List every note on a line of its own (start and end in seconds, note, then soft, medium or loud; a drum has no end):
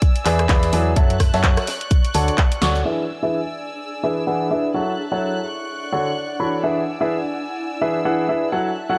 0.00 0.93 D5 medium
0.00 0.95 G#5 medium
0.00 0.95 E6 medium
0.00 kick loud
0.00 closed hi-hat medium
0.16 closed hi-hat soft
0.16 closed hi-hat medium
0.25 0.47 E2 loud
0.25 0.43 E3 medium
0.25 0.43 E4 medium
0.25 0.43 G#4 medium
0.25 0.43 B4 medium
0.25 0.43 D5 medium
0.25 0.43 G#5 loud
0.25 clap medium
0.25 closed hi-hat medium
0.25 open hi-hat loud
0.39 cross-stick medium
0.39 closed hi-hat soft
0.48 0.71 E2 medium
0.48 0.70 E3 loud
0.48 0.70 E4 medium
0.48 0.70 G#4 medium
0.48 0.70 B4 medium
0.48 0.70 D5 medium
0.48 0.70 B5 loud
0.48 kick loud
0.48 snare loud
0.48 clap loud
0.48 closed hi-hat medium
0.63 snare soft
0.63 closed hi-hat medium
0.72 0.94 E2 loud
0.72 0.90 F#3 medium
0.72 0.90 E4 medium
0.72 0.90 G#4 medium
0.72 0.90 B4 medium
0.72 0.90 D5 medium
0.72 0.90 G#5 medium
0.72 closed hi-hat medium
0.72 open hi-hat medium
0.96 1.31 F#2 medium
0.96 1.14 F#3 medium
0.96 1.14 F#4 medium
0.96 1.14 A4 medium
0.96 1.14 C#5 medium
0.96 1.67 E5 medium
0.96 1.14 E5 medium
0.96 1.67 A5 medium
0.96 1.14 A5 medium
0.96 2.84 F#6 medium
0.96 kick loud
0.96 closed hi-hat medium
1.10 closed hi-hat medium
1.20 kick medium
1.20 cross-stick medium
1.20 closed hi-hat medium
1.20 open hi-hat loud
1.33 1.57 F#2 medium
1.33 1.59 F#3 loud
1.33 1.59 F#4 medium
1.33 1.59 A4 medium
1.33 1.59 C#5 medium
1.33 1.59 E5 medium
1.33 1.59 A5 loud
1.33 snare medium
1.33 closed hi-hat soft
1.44 kick loud
1.44 clap loud
1.44 closed hi-hat medium
1.57 cross-stick medium
1.57 snare soft
1.57 closed hi-hat medium
1.67 2.84 D5 medium
1.67 2.84 C#6 medium
1.67 snare loud
1.67 closed hi-hat medium
1.67 open hi-hat medium
1.81 closed hi-hat soft
1.91 kick loud
1.91 closed hi-hat medium
2.04 closed hi-hat soft
2.04 closed hi-hat medium
2.14 2.30 D2 loud
2.14 2.32 D3 medium
2.14 2.32 F#4 medium
2.14 2.32 A4 medium
2.14 2.32 C#5 medium
2.14 2.32 D5 medium
2.14 2.32 A5 medium
2.14 closed hi-hat medium
2.14 open hi-hat loud
2.28 closed hi-hat soft
2.38 kick loud
2.38 clap loud
2.38 closed hi-hat medium
2.52 closed hi-hat medium
2.61 2.83 D2 medium
2.61 2.82 F#4 medium
2.61 2.82 A4 medium
2.61 2.82 C#5 medium
2.61 2.82 D5 medium
2.61 2.82 C#6 medium
2.61 snare medium
2.61 open hi-hat medium
2.75 closed hi-hat medium
2.85 3.03 E3 medium
2.85 3.03 D4 medium
2.85 4.75 D4 medium
2.85 3.03 E4 medium
2.85 3.03 G#4 medium
2.85 3.03 B4 medium
2.85 4.73 D5 medium
2.85 3.03 E5 medium
2.85 4.72 G#5 medium
2.85 4.73 E6 medium
3.01 4.75 G#4 medium
3.23 3.38 E3 medium
3.23 3.38 D4 medium
3.23 3.38 E4 medium
3.23 3.38 G#4 medium
3.23 3.38 B4 medium
3.23 3.38 E5 medium
3.69 5.04 E5 medium
4.04 4.21 E3 medium
4.04 4.21 D4 medium
4.04 4.21 E4 medium
4.04 4.21 G#4 medium
4.04 4.21 B4 medium
4.04 4.21 E5 medium
4.27 4.48 E3 medium
4.27 4.48 D4 medium
4.27 4.48 E4 medium
4.27 4.48 G#4 medium
4.27 4.48 B4 medium
4.27 4.48 F#5 medium
4.51 4.68 D4 medium
4.51 4.68 E4 medium
4.51 4.68 G#4 medium
4.51 4.68 B4 medium
4.51 4.68 E5 medium
4.74 4.92 F#3 medium
4.74 4.92 E4 medium
4.74 5.93 E4 medium
4.74 4.92 F#4 medium
4.74 4.92 A4 medium
4.74 4.92 C#5 medium
4.74 5.45 E5 medium
4.74 4.92 F#5 medium
4.74 5.44 A5 medium
4.74 6.61 F#6 medium
5.08 5.37 F#3 medium
5.08 5.37 E4 medium
5.08 5.37 F#4 medium
5.08 5.37 A4 medium
5.08 5.37 C#5 medium
5.08 7.40 F#5 medium
5.08 5.37 F#5 medium
5.45 7.40 D4 medium
5.45 8.49 D5 medium
5.45 6.62 C#6 medium
5.92 6.10 D3 medium
5.92 6.10 D4 medium
5.92 6.10 F#4 medium
5.92 6.10 A4 medium
5.92 6.10 C#5 medium
5.92 6.10 F#5 medium
6.40 6.60 E3 medium
6.40 6.60 D4 medium
6.40 6.60 F#4 medium
6.40 6.60 A4 medium
6.40 6.60 C#5 medium
6.40 6.60 B5 medium
6.63 6.81 E3 medium
6.63 6.81 D4 medium
6.63 6.81 E4 medium
6.63 8.98 E4 medium
6.63 6.81 G#4 medium
6.63 6.81 B4 medium
6.63 6.81 E5 medium
6.63 8.50 G#5 medium
6.63 8.50 E6 medium
7.01 7.16 E3 medium
7.01 7.16 D4 medium
7.01 7.16 E4 medium
7.01 7.16 G#4 medium
7.01 7.16 B4 medium
7.01 7.16 E5 medium
7.50 8.82 G#5 medium
7.82 7.99 E3 medium
7.82 7.99 D4 medium
7.82 7.99 E4 medium
7.82 7.99 G#4 medium
7.82 7.99 B4 medium
7.82 7.99 E5 medium
8.05 8.26 E3 medium
8.05 8.26 D4 medium
8.05 8.26 E4 medium
8.05 8.26 G#4 medium
8.05 8.26 B4 medium
8.05 8.26 F#5 medium
8.29 8.46 D4 medium
8.29 8.46 E4 medium
8.29 8.46 G#4 medium
8.29 8.46 B4 medium
8.29 8.46 E5 medium
8.52 8.70 F#3 medium
8.52 8.70 E4 medium
8.52 8.70 F#4 medium
8.52 8.70 A4 medium
8.52 8.70 C#5 medium
8.52 8.98 E5 medium
8.52 8.70 F#5 medium
8.52 8.98 A5 medium
8.52 8.98 F#6 medium
8.90 8.98 F#3 medium
8.90 8.98 E4 medium
8.90 8.98 F#4 medium
8.90 8.98 A4 medium
8.90 8.98 C#5 medium
8.90 8.98 F#5 medium